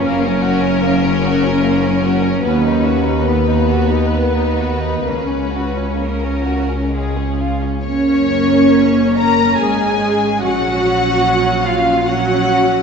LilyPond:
<<
  \new Staff \with { instrumentName = "Violin section" } { \time 3/4 \key fis \major \tempo 4 = 71 ais'2. | b'2.~ | b'4 ais'4 gis'8. r16 | cis''4. ais''8 gis''4 |
fis''4. eis''8 fis''4 | }
  \new Staff \with { instrumentName = "Cello section" } { \time 3/4 \key fis \major fis,2. | dis,2. | cis,2~ cis,8. r16 | cis'4. ais'8 gis'4 |
fis'4. eis'8 fis'4 | }
  \new Staff \with { instrumentName = "Violin section" } { \time 3/4 \key fis \major ais16 cis'16 fis'16 cis'16 ais16 cis'16 fis'16 cis'16 ais16 cis'16 fis'16 cis'16 | b16 dis'16 fis'16 dis'16 b16 dis'16 fis'16 dis'16 b16 dis'16 fis'16 dis'16 | ais16 cis'16 fis'16 cis'16 ais16 cis'16 fis'16 cis'16 gis16 cis'16 eis'16 cis'16 | cis''4. ais''8 gis''4 |
fis''4. eis''8 fis''4 | }
  \new Staff \with { instrumentName = "Viola section" } { \time 3/4 \key fis \major << { r2. | r2. | r2. | cis'2. |
cis'2 cis'4 | } \\ { cis'2.~ | cis'4 b2 | cis'2~ cis'8. r16 | ais2 gis4 |
fis2 fis4 | } >> }
  \new Staff \with { instrumentName = "Double bass section" } { \clef bass \time 3/4 \key fis \major fis,,2. | dis,2. | cis,2~ cis,8. r16 | fis,,2 gis,,4 |
ais,,2. | }
>>